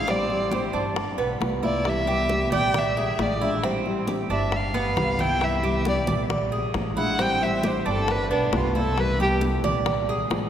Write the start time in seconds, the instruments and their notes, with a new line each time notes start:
Already playing: upright bass A1, violin F5
0.07 nylon-string guitar E3 G3 C4 E4, cuban tres C4, violin D5, high bongo, high conga
0.30 nylon-string guitar G3 C4 E4, high bongo, high conga
0.51 nylon-string guitar E3 G3 C4 E4, cuban tres G4, violin C5, high bongo, high conga
0.73 upright bass G1, cuban tres D4, high conga
0.96 muted nylon-string guitar stroke, high bongo, high conga
1.18 upright bass B1, cuban tres B3, high bongo, high conga
1.40 upright bass C2, nylon-string guitar G3 B3 F4, high bongo, low bongo, high conga
1.63 nylon-string guitar B3 F4, cuban tres E4, violin D5, high bongo, high conga
1.85 nylon-string guitar C3 E3 G3 B3 E4, violin E5, high bongo, high conga
2.07 nylon-string guitar E3 G3 B3 E4, cuban tres G4, high conga
2.29 nylon-string guitar E3 G3 B3 E4, high bongo, high conga
2.52 upright bass A#1, cuban tres D5, violin G5, high conga, low conga
2.74 violin E5, muted nylon-string guitar stroke, high bongo, high conga, low conga
2.97 cuban tres G#4, high conga
3.18 upright bass A1, nylon-string guitar F3 G#3 D4 F4, violin D5, high bongo, low bongo, high conga
3.41 nylon-string guitar G#3 D4 F4, cuban tres E4
3.63 nylon-string guitar E3 G3 C4 E4, cuban tres C4, high bongo, high conga
3.86 nylon-string guitar G3 C4 E4, high bongo, high conga
4.07 nylon-string guitar E3 G3 C4 E4, cuban tres G4, high bongo, high conga
4.30 upright bass G1, cuban tres D4, violin E5, high conga
4.52 violin F5, muted nylon-string guitar stroke, high bongo, high conga
4.74 cuban tres B3, high bongo, high conga
4.96 upright bass C2, nylon-string guitar G3 B3 F4, high bongo, low bongo, low conga
5.18 nylon-string guitar B3 F4, cuban tres E4, violin G5, high bongo, low conga
5.41 nylon-string guitar C3 E3 G3 B3 E4, violin E5, high bongo, high conga
5.63 nylon-string guitar E3 G3 B3 E4, cuban tres G4, high conga
5.85 nylon-string guitar E3 G3 B3 E4, violin D5, high bongo, high conga
6.07 upright bass A#1, cuban tres D5, high conga, low conga
6.30 muted nylon-string guitar stroke, high bongo, high conga, low conga
6.52 cuban tres G#4, high conga
6.74 upright bass A1, nylon-string guitar F3 G#3 D4 F4, high bongo, low bongo, high conga
6.96 nylon-string guitar G#3 D4 F4, cuban tres E4, violin F#5, high conga
7.18 nylon-string guitar E3 G3 C4 E4, cuban tres C4, violin G5, high bongo, high conga
7.41 nylon-string guitar G3 C4 E4, violin E5, high bongo, high conga
7.63 nylon-string guitar E3 G3 C4 E4, cuban tres G4, high bongo, high conga
7.68 violin C5
7.86 upright bass G1, cuban tres D4, violin A4, high conga
8.08 violin B4, muted nylon-string guitar stroke, high bongo, high conga
8.30 upright bass B1, cuban tres B3, violin D4, high bongo, high conga
8.52 upright bass C2, nylon-string guitar G3 B3 F4, violin F4, high bongo, low bongo, high conga
8.75 nylon-string guitar B3 F4, cuban tres E4, violin A4, high bongo, high conga
8.97 nylon-string guitar C3 E3 G3 B3 E4, violin B4, high bongo, high conga
9.19 nylon-string guitar E3 G3 B3 E4, cuban tres G4, violin G4, high conga
9.41 nylon-string guitar E3 G3 B3 E4, high bongo, high conga
9.64 upright bass A#1, cuban tres D5, high conga, low conga
9.86 muted nylon-string guitar stroke, high bongo, high conga, low conga
10.09 cuban tres G#4, high conga
10.30 upright bass A1, nylon-string guitar F3 G#3 D4 F4, high bongo, low bongo, high conga